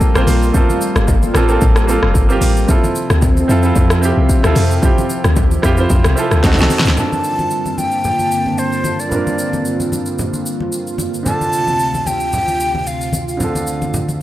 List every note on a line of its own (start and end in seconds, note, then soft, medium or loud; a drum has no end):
0.00 2.65 G3 medium
0.00 0.14 A#3 medium
0.00 2.65 A#3 medium
0.00 0.16 C4 medium
0.00 0.17 F4 medium
0.00 2.65 F4 medium
0.00 0.57 A4 loud
0.00 kick medium
0.00 shaker medium
0.14 0.26 A1 loud
0.14 0.47 A#3 medium
0.14 0.47 C4 medium
0.14 0.48 F4 medium
0.14 0.48 C5 medium
0.14 cross-stick loud
0.14 shaker medium
0.27 0.51 A#1 loud
0.27 open hi-hat medium
0.27 high conga medium
0.27 shaker loud
0.43 shaker medium
0.53 0.61 A3 medium
0.53 1.20 C4 medium
0.53 1.20 F4 medium
0.53 1.21 A4 medium
0.53 kick loud
0.53 low conga medium
0.53 shaker medium
0.60 1.22 A#3 medium
0.70 high conga medium
0.70 shaker medium
0.81 shaker loud
0.96 1.30 G1 loud
0.96 cross-stick loud
0.96 high conga medium
0.96 shaker medium
1.08 kick loud
1.08 low conga medium
1.08 shaker medium
1.23 high conga medium
1.23 shaker medium
1.34 1.58 A1 loud
1.34 1.46 A#3 medium
1.34 1.47 C4 medium
1.34 1.47 F4 medium
1.34 1.48 A4 loud
1.34 cross-stick loud
1.34 high conga medium
1.34 shaker medium
1.48 1.81 A#3 medium
1.48 1.81 C4 medium
1.48 1.82 F4 medium
1.48 1.82 A4 loud
1.48 shaker medium
1.61 1.98 A1 loud
1.61 kick loud
1.61 low conga medium
1.61 shaker medium
1.76 cross-stick loud
1.76 shaker medium
1.87 2.20 A#3 medium
1.87 2.21 C4 medium
1.87 2.22 F4 medium
1.87 2.22 A4 loud
1.87 shaker loud
2.03 2.14 F1 loud
2.03 cross-stick medium
2.15 2.39 G1 loud
2.15 kick medium
2.15 shaker medium
2.29 2.61 A#3 medium
2.29 2.61 C4 medium
2.29 2.62 F4 medium
2.29 2.63 G4 loud
2.29 shaker medium
2.41 2.65 A1 medium
2.41 open hi-hat medium
2.41 high conga medium
2.41 shaker medium
2.57 shaker medium
2.68 6.93 C3 medium
2.68 6.40 F3 medium
2.68 3.33 C4 medium
2.68 6.93 C4 medium
2.68 3.34 E4 medium
2.68 3.35 F4 medium
2.68 3.35 A4 medium
2.68 kick loud
2.68 low conga medium
2.68 shaker medium
2.84 high conga medium
2.84 shaker medium
2.95 shaker loud
3.10 3.44 D2 loud
3.10 cross-stick medium
3.10 high conga medium
3.10 shaker soft
3.22 kick loud
3.22 low conga medium
3.22 shaker medium
3.37 high conga medium
3.37 shaker medium
3.48 3.73 F2 loud
3.48 3.60 C4 medium
3.48 3.61 E4 medium
3.48 3.61 F4 medium
3.48 3.62 A4 loud
3.48 high conga medium
3.48 shaker medium
3.63 3.95 C4 medium
3.63 3.95 E4 medium
3.63 3.96 F4 medium
3.63 3.97 A4 loud
3.63 shaker medium
3.75 4.13 F2 loud
3.75 kick loud
3.75 low conga medium
3.75 shaker medium
3.90 cross-stick loud
3.90 shaker medium
4.02 4.35 C4 medium
4.02 4.35 E4 medium
4.02 4.36 F4 medium
4.02 4.36 G4 loud
4.02 shaker loud
4.17 4.28 C2 medium
4.29 kick medium
4.29 shaker medium
4.43 4.55 D2 medium
4.43 4.75 C4 medium
4.43 4.76 E4 medium
4.43 4.76 F4 medium
4.43 4.77 A4 loud
4.43 cross-stick loud
4.43 shaker medium
4.55 4.80 F2 medium
4.55 open hi-hat medium
4.55 high conga medium
4.55 shaker medium
4.71 shaker medium
4.82 5.48 C4 medium
4.82 5.48 E4 medium
4.82 5.49 F4 medium
4.82 5.49 G4 medium
4.82 kick loud
4.82 low conga medium
4.82 shaker medium
4.98 high conga medium
4.98 shaker medium
5.10 shaker medium
5.24 5.59 D2 loud
5.24 cross-stick medium
5.24 high conga medium
5.24 shaker soft
5.36 kick medium
5.36 low conga medium
5.36 shaker medium
5.51 high conga medium
5.51 shaker medium
5.62 5.87 F2 medium
5.62 5.75 C4 medium
5.62 5.75 E4 medium
5.62 5.76 F4 medium
5.62 5.76 G4 loud
5.62 kick medium
5.62 cross-stick medium
5.62 high conga medium
5.62 shaker medium
5.77 6.09 C4 medium
5.77 6.10 E4 medium
5.77 6.10 F4 medium
5.77 6.11 C5 loud
5.77 shaker medium
5.90 6.03 F2 loud
5.90 kick loud
5.90 low conga medium
5.90 shaker medium
6.04 6.15 C2 loud
6.04 cross-stick loud
6.04 shaker medium
6.16 6.41 C4 medium
6.16 6.44 E4 medium
6.16 6.44 F4 medium
6.16 6.44 A4 medium
6.16 shaker loud
6.31 6.42 D2 medium
6.31 cross-stick medium
6.31 shaker medium
6.43 6.57 D2 loud
6.43 6.55 C4 medium
6.43 6.97 D#4 medium
6.43 6.55 D#4 medium
6.43 6.97 F#4 medium
6.43 6.56 F#4 medium
6.43 6.57 A4 medium
6.43 kick medium
6.43 snare medium
6.43 shaker medium
6.53 snare medium
6.57 6.69 C2 loud
6.57 6.89 C4 medium
6.57 6.90 D#4 medium
6.57 6.91 F#4 medium
6.57 6.91 A4 medium
6.57 shaker medium
6.62 snare medium
6.70 open hi-hat medium
6.70 high conga medium
6.70 shaker loud
6.79 snare loud
6.85 6.96 D2 medium
6.85 snare loud
6.85 shaker medium
6.94 9.06 G2 medium
6.94 11.22 G2 medium
6.94 11.22 D3 medium
6.94 9.07 A#3 medium
6.94 11.22 A#3 medium
6.94 9.07 C4 medium
6.94 11.22 C4 medium
6.94 14.22 F4 medium
6.94 11.22 A5 medium
6.94 7.79 A5 loud
6.94 low conga medium
6.94 shaker medium
6.98 9.08 D4 soft
6.98 9.09 F4 medium
6.98 9.09 A4 medium
7.13 high conga medium
7.13 shaker medium
7.24 shaker medium
7.39 high conga medium
7.39 shaker soft
7.51 shaker medium
7.66 high conga medium
7.66 shaker medium
7.78 8.60 G5 loud
7.78 high conga medium
7.78 shaker medium
7.91 shaker soft
8.04 low conga medium
8.04 shaker medium
8.19 high conga soft
8.19 shaker medium
8.32 shaker medium
8.46 high conga medium
8.58 9.01 C5 medium
8.58 shaker medium
8.73 shaker soft
8.84 high conga medium
8.84 shaker medium
9.00 10.07 D5 medium
9.00 shaker medium
9.09 11.20 G2 medium
9.09 11.21 A#3 medium
9.09 11.22 C4 medium
9.09 low conga medium
9.09 shaker medium
9.13 11.22 D4 medium
9.13 11.23 F4 medium
9.13 11.24 A#4 medium
9.27 high conga medium
9.27 shaker medium
9.38 shaker medium
9.53 high conga medium
9.53 shaker soft
9.65 shaker medium
9.80 high conga medium
9.80 shaker medium
9.92 high conga medium
9.92 shaker medium
10.06 shaker medium
10.19 low conga medium
10.19 shaker medium
10.33 high conga soft
10.33 shaker medium
10.46 shaker medium
10.60 high conga medium
10.72 shaker medium
10.87 shaker soft
10.98 high conga medium
10.98 shaker medium
11.14 shaker medium
11.23 14.22 D2 medium
11.23 13.38 C3 medium
11.23 13.35 D3 medium
11.23 13.36 C4 medium
11.23 13.36 D4 medium
11.23 12.08 A5 loud
11.23 low conga medium
11.23 shaker medium
11.28 13.37 F4 medium
11.28 13.38 A4 medium
11.41 high conga medium
11.41 shaker medium
11.53 shaker medium
11.68 high conga medium
11.68 shaker soft
11.79 shaker medium
11.94 high conga medium
11.94 shaker soft
12.06 12.88 G5 loud
12.06 high conga medium
12.06 shaker medium
12.20 shaker medium
12.33 low conga medium
12.33 shaker medium
12.48 high conga soft
12.48 shaker soft
12.60 shaker medium
12.75 high conga medium
12.87 13.28 F5 medium
12.87 shaker medium
13.01 shaker medium
13.13 high conga medium
13.13 shaker medium
13.28 14.22 F5 medium
13.28 shaker medium
13.37 14.22 D3 medium
13.37 14.22 C4 medium
13.37 14.22 D4 medium
13.37 low conga medium
13.37 shaker medium
13.42 14.22 F4 medium
13.42 14.22 A4 medium
13.55 high conga medium
13.55 shaker medium
13.67 shaker medium
13.82 high conga medium
13.82 shaker soft
13.94 low conga medium
13.94 shaker medium
14.09 high conga medium
14.09 shaker medium